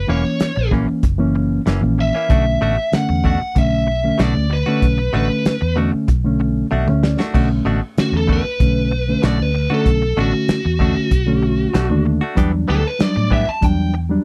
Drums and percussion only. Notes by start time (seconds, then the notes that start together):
0.40 snare, closed hi-hat
0.72 kick
1.03 kick, closed hi-hat
1.67 snare, closed hi-hat
2.30 kick, closed hi-hat
2.93 snare, closed hi-hat
3.25 kick
3.56 kick, closed hi-hat
4.19 snare, closed hi-hat
4.82 kick, closed hi-hat
5.45 snare, closed hi-hat
6.08 kick, closed hi-hat
6.71 high tom
6.88 mid tom
7.03 snare
7.20 snare
7.34 kick, crash
7.98 snare, closed hi-hat
8.29 kick
8.60 kick, closed hi-hat
9.23 snare, closed hi-hat
9.86 kick, closed hi-hat
10.48 snare, closed hi-hat
10.80 kick
11.11 kick, closed hi-hat
11.74 snare, closed hi-hat
12.37 kick, closed hi-hat
13.00 snare, closed hi-hat
13.31 kick
13.62 kick, closed hi-hat